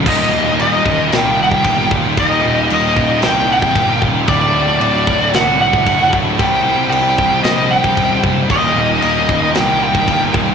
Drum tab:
CC |x---x---x---x---|x---x---x---x---|x---x---x---x---|x---x---x---x---|
SD |--------o-------|--------o-------|--------o-------|--------o-------|
BD |o-----o----oo-o-|o-----o----oo-o-|o-----o----oo-o-|o-----o----oo-o-|

CC |x---x---x---x---|
SD |--------o-------|
BD |o-----o----oo-o-|